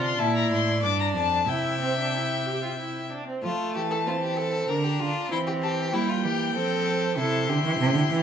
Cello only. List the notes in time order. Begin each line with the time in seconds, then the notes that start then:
Already playing: C3
0.19 A#2
0.51 A2
0.83 G2
1.15 F2
1.47 C3
3.44 F3
3.76 E3
4.70 D3
5.01 D3
5.32 E3
5.93 G3
6.25 E3
6.55 F3
7.18 C3
7.49 D3
7.64 E3
7.79 C3
7.94 D3
8.11 E3